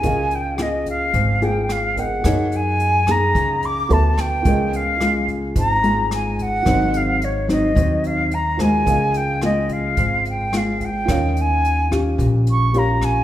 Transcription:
<<
  \new Staff \with { instrumentName = "Flute" } { \time 4/4 \key des \lydian \tempo 4 = 109 aes''8 g''8 ees''8 f''4 g''8 f''8 ges''8~ | ges''8 aes''4 bes''4 d'''8 a''8 g''8~ | g''8 f''4 r8 bes''4 aes''8 ges''8~ | ges''8 f''8 des''8 ees''4 f''8 bes''8 aes''8~ |
aes''8 g''8 ees''8 f''4 g''8 f''8 g''8~ | g''8 aes''4 r4 des'''8 bes''8 aes''8 | }
  \new Staff \with { instrumentName = "Grand piano" } { \time 4/4 \key des \lydian <aes' bes' ees'' f''>2.~ <aes' bes' ees'' f''>8 <aes' bes' ees'' g''>8 | <aes' bes' des'' ees''>2. <fis' a' b' e''>4 | <f' aes' bes' ees''>1 | <ges' bes' c'' ees''>2.~ <ges' bes' c'' ees''>8 <ges' bes' c'' ees''>8 |
<aes' bes' ees'' f''>1 | <f' bes' des'' f''>2. <g' bes' des'' f''>4 | }
  \new Staff \with { instrumentName = "Nylon-string guitar" } { \time 4/4 \key des \lydian << { <bes f' aes'>4 <bes f' aes'>4 r8 <bes f' aes'>4. | <bes ees' aes'>4. <bes ees' aes'>4. <b fis' a'>4 | <aes bes f'>4 <aes bes f'>4. <aes bes f'>4. | <ges c' ees'>4 r8 <ges c' ees'>8 <ges c' ees'>4 r8 <aes bes f'>8~ |
<aes bes f'>4 <aes bes f'>2 <aes bes f'>8 r8 | <des' f'>4. <des' f' g'>4. <des' f' g'>4 | } \\ { des2 aes,2 | ges2 des4 r4 | des2 aes,2 | aes,2 ees2 |
des2 aes,2 | ees2 bes,2 | } >> }
  \new Staff \with { instrumentName = "Upright bass" } { \clef bass \time 4/4 \key des \lydian des,2 aes,,2 | ges,2 des,4 d,4 | des,2 aes,,2 | aes,,2 ees,2 |
des,2 aes,,2 | ees,2 bes,,2 | }
  \new DrumStaff \with { instrumentName = "Drums" } \drummode { \time 4/4 <hh bd>8 hh8 <hh ss>8 <hh bd>8 <hh bd>8 hh8 <hh ss>8 <hh bd>8 | <hh bd ss>8 hh8 hh8 <hh bd ss>8 <hh bd>8 hh8 hh8 <hh bd ss>8 | <hh bd>8 hh8 <hh ss>8 <hh bd>8 <hh bd>8 hh8 <hh ss>8 <hh bd>8 | <hh bd ss>8 hh8 hh8 <hh bd ss>8 <hh bd>8 hh8 hh8 <hh bd ss>8 |
<hh bd>8 hh8 <hh ss>8 <hh bd>8 <hh bd>8 hh8 <hh ss>8 <hh bd>8 | <hh bd ss>8 hh8 hh8 <hh bd ss>8 <hh bd>8 hh8 hh8 <hh bd ss>8 | }
>>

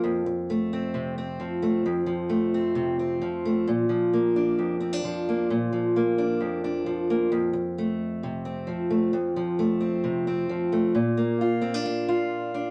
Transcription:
\new Staff \with { instrumentName = "Steel-string acoustic guitar" } { \time 4/4 \key bes \major \tempo 4 = 132 << { r4 a8 c'4 c'4 a8 | r4 a8 c'4 c'4 a8 | r4 bes8 d'4 c'16 d'8. bes8 | r4 bes8 d'4 d'4 bes8 |
r4 a4. c'4 a8 | r4 a8 c'4 c'4 a8 | r8 bes8 f'8 c'16 d'8. f'4 d'8 | } \\ { f,2 c4 f4 | f,8 f4. c4 f4 | bes,8 f4. f,4 f4 | bes,8 f4. f,4 f4 |
f,2 c4 f4 | f,8 f4. c4 f4 | bes,1 | } >> }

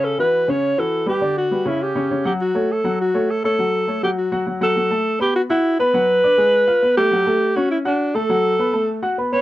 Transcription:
<<
  \new Staff \with { instrumentName = "Alto saxophone" } { \time 4/4 \key fis \phrygian \tempo 4 = 203 a'8 b'4 cis''4 a'4 g'8~ | g'8 fis'4 e'8 g'4. g'8 | fis'4 a'4 fis'4 a'8 a'8~ | a'4. g'8 fis'4 r8 a'8~ |
a'4. g'8 fis'8 e'4 b'8~ | b'2.~ b'8 g'8~ | g'4. fis'8 e'8 d'4 a'8~ | a'2~ a'8 r4 cis''8 | }
  \new Staff \with { instrumentName = "Grand piano" } { \time 4/4 \key fis \phrygian <cis cis' cis''>8 <e e' fis'>4 <cis cis' cis''>4 <e e' fis'>4 <g g' b'>8 | <d d' d''>4 <g g' b'>8 <cis cis' cis''>4 <cis cis' cis''>8 <cis cis' cis''>8 <fis fis' fis''>8~ | <fis fis' fis''>8 <a a' cis''>4 <fis fis' fis''>4 <a a' cis''>4 <a a' cis''>8 | <fis fis' fis''>4 <a a' cis''>8 <fis fis' fis''>4 <fis fis' fis''>8 <fis fis' fis''>8 <fis fis' fis''>8 |
<fis fis' fis''>8 <a a' a''>4 <b b' b''>4 <fis' fis'' fis'''>4 <b b' b''>8 | <fis fis' fis''>4 <d' d'' d'''>8 <gis gis' gis''>4 <eis' eis'' eis'''>8 <b b' b''>8 <a a' a''>8 | <fis fis' fis''>8 <a a' a''>4 <cis' cis'' cis'''>4 <fis' fis'' fis'''>4 <a a' a''>8 | <fis fis' fis''>4 <b b' b''>8 <a a' a''>4 <fis' fis'' fis'''>8 <b b' b''>8 <b b' b''>8 | }
>>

